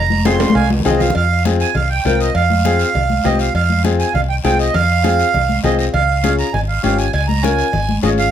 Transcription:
Already playing: fingered electric bass F1, accordion A#5
0.10 high conga
0.25 upright piano C4 F4 G#4, accordion C6, cowbell, high conga, high timbale, short guiro
0.40 high conga, high timbale, short guiro
0.50 high conga
0.55 fingered electric bass C2, accordion F5 G#5, cowbell, high timbale, long guiro
0.70 high conga, low timbale
0.80 low conga
0.85 fingered electric bass C2, upright piano C4 F4 G#4, accordion D#5, cowbell, low timbale, short guiro
0.90 low conga
1.00 accordion F5, low conga, low timbale, short guiro
1.10 low conga
1.15 fingered electric bass F2, accordion F5, cowbell, high conga, long guiro
1.45 upright piano C4 F4 G#4, cowbell, high conga, short guiro
1.60 accordion G#5, short guiro
1.75 fingered electric bass C2, accordion F5, cowbell, high conga, low conga, long guiro
1.90 accordion G5
2.05 fingered electric bass C2, upright piano C4 F4 A#4, accordion G5, cowbell, high conga, low conga, low timbale, short guiro
2.20 accordion D#5, short guiro
2.35 fingered electric bass F2, accordion F5, cowbell, high conga, long guiro
2.50 high conga
2.65 upright piano C4 F4 G#4, cowbell, high conga, short guiro
2.79 short guiro
2.94 fingered electric bass C2, cowbell, high conga, low conga, long guiro
3.10 high conga
3.24 fingered electric bass C2, upright piano C4 F4 G4, accordion D#5, cowbell, high conga, low conga, low timbale, short guiro
3.39 accordion F5, short guiro
3.54 fingered electric bass F2, accordion F5, cowbell, high conga, long guiro
3.70 high conga
3.84 upright piano C4 F4 G#4, cowbell, high conga, short guiro
3.99 accordion G#5, short guiro
4.14 fingered electric bass C2, accordion F5, cowbell, high conga, low conga, long guiro
4.29 accordion G5
4.44 fingered electric bass C2, upright piano C4 F4 G#4, accordion G5, cowbell, high conga, low timbale, short guiro
4.59 accordion D#5, short guiro
4.74 fingered electric bass F2, accordion F5, cowbell, high conga, low conga, long guiro
5.03 upright piano C4 F4 G#4, cowbell, high conga, short guiro
5.19 short guiro
5.34 fingered electric bass C2, cowbell, high conga, low conga, long guiro
5.49 high conga
5.63 fingered electric bass C2, upright piano C4 F4 G#4, accordion D#5, cowbell, high conga, low conga, low timbale, short guiro
5.79 accordion D#5, short guiro
5.94 fingered electric bass C#2, accordion F5, cowbell, high conga, low conga, long guiro
6.23 upright piano C#4 F4 G#4, cowbell, high conga, short guiro
6.39 accordion A#5, short guiro
6.54 fingered electric bass G#1, accordion G#5, cowbell, high conga, low conga, long guiro
6.68 accordion F5
6.83 fingered electric bass G#1, upright piano C#4 F4 G4, accordion F5, cowbell, high conga, low timbale, short guiro
6.98 accordion G#5, short guiro
7.13 fingered electric bass C#2, accordion G#5, cowbell, high conga, long guiro
7.28 accordion A#5, high conga
7.43 upright piano C#4 F4 A#4, accordion G#5, cowbell, high conga, short guiro
7.58 short guiro
7.73 fingered electric bass G#1, cowbell, high conga, low conga, long guiro
7.89 high conga
8.02 fingered electric bass G#1, upright piano C#4 F4 G#4, accordion D#5, cowbell, high conga, low timbale, short guiro
8.18 accordion F5, short guiro

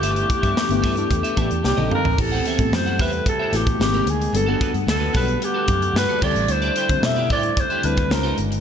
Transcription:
Already playing: analog synth pad E3 A3 B3 D4 G4, fm electric piano A3 B3 D4 E4 G4, alto saxophone G4
0.01 fingered electric bass G1, clean electric guitar A4 B4 E5, closed hi-hat
0.16 closed hi-hat
0.28 muted clean electric guitar stroke, kick, closed hi-hat
0.42 fingered electric bass G2, clean electric guitar A4 B4 E5, kick, closed hi-hat
0.57 snare
0.69 fingered electric bass G1, fm electric piano A3 B3 D4 E4 G4, muted clean electric guitar stroke, closed hi-hat
0.82 fingered electric bass G2, clean electric guitar A4 B4 E5, kick, snare, open hi-hat
0.96 fm electric piano A3 B3 D4 E4 A4, muted clean electric guitar stroke, closed hi-hat
1.10 fingered electric bass E2, muted clean electric guitar stroke, kick, closed hi-hat
1.23 clean electric guitar A4 B4 E5, closed hi-hat
1.36 fingered electric bass A1, fm electric piano A3 B3 D4 E4 G4 A5, clean electric guitar A4 B4 E5, kick, closed hi-hat
1.50 fingered electric bass E2, muted clean electric guitar stroke, closed hi-hat
1.64 fingered electric bass C2, analog synth pad D#3 G3 A#3 C4, fm electric piano A#3 C4 D4 D#4 G4 G5, alto saxophone G4, muted clean electric guitar stroke, snare
1.76 fingered electric bass A#1, fm electric piano A#3 C4 D4 D#4 A4, clean electric guitar G4 A#4 D#5, high tom
1.91 fm electric piano F5, muted clean electric guitar stroke, mid tom
1.95 alto saxophone A#4
2.05 fingered electric bass A1, muted clean electric guitar stroke, floor tom
2.18 fingered electric bass A1, analog synth pad C3 E3 G3 A3 G4, fm electric piano A3 B3 C4 E4 G4, alto saxophone A4, muted clean electric guitar stroke, kick, crash
2.32 clean electric guitar G4 C5 F#5
2.46 clean electric guitar G4 C5 E5, snare, closed hi-hat
2.58 fingered electric bass A2, fm electric piano A3 B3 C4 E4 A4, muted clean electric guitar stroke, kick, closed hi-hat
2.72 fingered electric bass F#2, alto saxophone C5, muted clean electric guitar stroke, snare
2.86 clean electric guitar G4 C5 F#5, closed hi-hat
2.99 fingered electric bass E2, clean electric guitar G4 C5 E5, alto saxophone B4, kick, open hi-hat
3.13 muted clean electric guitar stroke, closed hi-hat
3.26 alto saxophone A4, muted clean electric guitar stroke, kick, closed hi-hat
3.39 clean electric guitar G4 C5 E5
3.53 fingered electric bass A1, fm electric piano A3 B3 C4 E4 F#4, alto saxophone G4, muted clean electric guitar stroke, snare, closed hi-hat
3.67 muted clean electric guitar stroke, kick, closed hi-hat
3.79 fingered electric bass G#1, analog synth pad D#3 G#3 A#3, fm electric piano G#3 A#3 C4 D#4 G4, alto saxophone G4, muted clean electric guitar stroke, snare
3.93 clean electric guitar C4 G4 A#4, closed hi-hat
4.06 fingered electric bass D2, alto saxophone G#4, muted clean electric guitar stroke, closed hi-hat
4.19 muted clean electric guitar stroke, closed hi-hat
4.33 fingered electric bass G1, analog synth pad D3 G3 A3 B3 F#5, fm electric piano G3 B3 D4 F#4 A4, alto saxophone A4, muted clean electric guitar stroke, closed hi-hat
4.46 fm electric piano G3 B3 D4 F#4 A4, clean electric guitar B3 F#4 A4
4.60 clean electric guitar B3 F#4 B4, kick, closed hi-hat
4.73 fingered electric bass G2, muted clean electric guitar stroke, closed hi-hat
4.86 fingered electric bass D2, alto saxophone A4, muted clean electric guitar stroke, snare
5.00 clean electric guitar B3 F#4 B4
5.13 fingered electric bass B1, fm electric piano G3 B3 D4 A4 F#5, clean electric guitar B3 F#4 A4, alto saxophone B4, kick, snare, open hi-hat
5.27 muted clean electric guitar stroke, closed hi-hat
5.40 alto saxophone G4, muted clean electric guitar stroke, closed hi-hat
5.54 clean electric guitar B3 F#4 A4
5.68 fingered electric bass F#2, muted clean electric guitar stroke, kick, closed hi-hat
5.81 muted clean electric guitar stroke, closed hi-hat
5.94 fingered electric bass G2, alto saxophone B4, muted clean electric guitar stroke, snare
6.09 clean electric guitar B3 F#4 A4, closed hi-hat
6.21 fingered electric bass D2, fm electric piano G3 C4 D4 E4 A4, clean electric guitar E4 G4 C5, analog synth pad E4, alto saxophone D5, kick, crash
6.35 fingered electric bass A1, muted clean electric guitar stroke, closed hi-hat
6.48 fingered electric bass D2, alto saxophone C5, muted clean electric guitar stroke, closed hi-hat
6.62 clean electric guitar E4 G4 D5, closed hi-hat
6.76 clean electric guitar E4 G4 C5, closed hi-hat
6.89 fingered electric bass D3, fm electric piano G3 C4 D4 E4 C5, muted clean electric guitar stroke, kick, closed hi-hat
7.02 fingered electric bass B2, alto saxophone E5, muted clean electric guitar stroke, snare
7.16 clean electric guitar E4 G4 D5
7.30 fingered electric bass A2, clean electric guitar E4 G4 C5, alto saxophone D5, kick, open hi-hat
7.43 muted clean electric guitar stroke, closed hi-hat
7.57 alto saxophone C5, muted clean electric guitar stroke, kick, closed hi-hat
7.70 clean electric guitar E4 G4 C5, closed hi-hat
7.83 fingered electric bass D2, fm electric piano G3 C4 D4 E4 A4, alto saxophone B4, muted clean electric guitar stroke, closed hi-hat
7.97 muted clean electric guitar stroke, kick, closed hi-hat
8.10 fingered electric bass C#2, analog synth pad D#3 G#3 C#4 F4, fm electric piano G#3 C#4 D#4 F4 C5, alto saxophone A#4, muted clean electric guitar stroke, snare
8.23 clean electric guitar D#4 F4 C5
8.38 fingered electric bass G1, muted clean electric guitar stroke, closed hi-hat
8.51 muted clean electric guitar stroke, closed hi-hat

